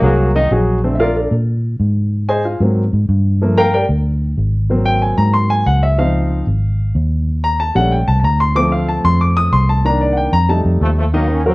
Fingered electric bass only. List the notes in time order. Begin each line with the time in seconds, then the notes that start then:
0.02 C2
0.51 A#1
1.31 A#2
1.79 G#2
2.60 G#2
2.93 G#2
3.09 G2
3.89 D2
4.38 G#1
5.18 G#2
5.66 C#2
6.47 G#1
6.95 D#2
7.76 A#1
8.08 C2
8.24 D2
9.04 F2
9.52 C2
10.33 F2
10.65 F2
10.81 D#2